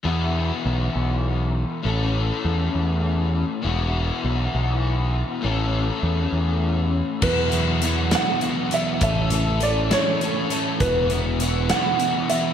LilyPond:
<<
  \new Staff \with { instrumentName = "Upright piano" } { \time 6/8 \key e \mixolydian \tempo 4. = 67 r2. | r2. | r2. | r2. |
b'4. fis''4 e''8 | e''4 d''8 cis''4 r8 | b'4. fis''4 e''8 | }
  \new Staff \with { instrumentName = "Clean electric guitar" } { \time 6/8 \key e \mixolydian r2. | r2. | r2. | r2. |
<e, b, fis b e' fis'>8 <e, b, fis b e' fis'>8 <e, b, fis b e' fis'>8 <e, b, fis b e' fis'>8 <e, b, fis b e' fis'>8 <e, b, fis b e' fis'>8 | <a, e a cis' a'>8 <a, e a cis' a'>8 <a, e a cis' a'>8 <a, e a cis' a'>8 <a, e a cis' a'>8 <a, e a cis' a'>8 | <e, b, e b e' fis'>8 <e, b, e b e' fis'>8 <e, b, e b e' fis'>8 <e, b, e b e' fis'>8 <e, b, e b e' fis'>8 <e, b, e b e' fis'>8 | }
  \new Staff \with { instrumentName = "Overdriven electric guitar" } { \time 6/8 \key e \mixolydian <e, b, e b e' fis'>2. | <a, e a cis' a'>2. | <e, b, e b e' fis'>2. | <a, e a cis' a'>2. |
<e, b, fis b e' fis'>8 <e, b, fis b e' fis'>8 <e, b, fis b e' fis'>8 <e, b, fis b e' fis'>8 <e, b, fis b e' fis'>8 <e, b, fis b e' fis'>8 | <a, e a cis' a'>8 <a, e a cis' a'>8 <a, e a cis' a'>8 <a, e a cis' a'>8 <a, e a cis' a'>8 <a, e a cis' a'>8 | <e, b, e b e' fis'>8 <e, b, e b e' fis'>8 <e, b, e b e' fis'>8 <e, b, e b e' fis'>8 <e, b, e b e' fis'>8 <e, b, e b e' fis'>8 | }
  \new Staff \with { instrumentName = "Picked electric bass" } { \clef bass \time 6/8 \key e \mixolydian e,4 b,,8 b,,4. | a,,4 e,8 e,4. | e,,4 b,,8 b,,4. | a,,4 e,8 e,4. |
e,2 r4 | a,,2 r4 | e,,2 r4 | }
  \new DrumStaff \with { instrumentName = "Drums" } \drummode { \time 6/8 r4. r4. | r4. r4. | r4. r4. | r4. r4. |
<cymc bd>8 hh8 hh8 <hh sn>8 hh8 hh8 | <hh bd>8 hh8 hh8 <hh sn>8 hh8 hh8 | <hh bd>8 hh8 hh8 <hh sn>8 hh8 hh8 | }
>>